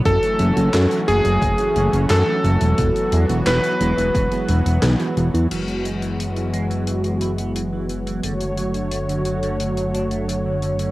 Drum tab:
CC |----------------|----------------|x---------------|----------------|
HH |xxxxxxxxxxxxx-xx|xxxxxxxxxxxxxxxx|xxxxxxxxxxxxx-xx|xxxxxxxxxxxxx-xx|
CP |----x-------x---|----x-------x---|----------------|----------------|
SD |----o-------o---|----o-------o---|----------------|----------------|
BD |o-------o-------|o-------o-------|----------------|----------------|